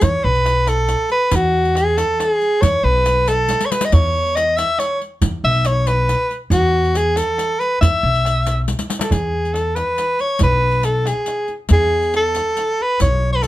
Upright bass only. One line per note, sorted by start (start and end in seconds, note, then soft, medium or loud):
0.03 0.11 E2 medium
0.24 0.94 B1 medium
1.32 2.02 E2 loud
2.62 2.71 E2 medium
2.83 3.53 B1 medium
3.93 4.62 E2 medium
5.23 5.31 E2 medium
5.44 6.13 B1 medium
6.50 7.20 E2 medium
7.81 7.90 E2 medium
8.03 8.72 B1 medium
9.12 9.81 E2 medium
10.41 11.10 B1 medium
11.70 12.39 E2 medium
13.00 13.47 B1 medium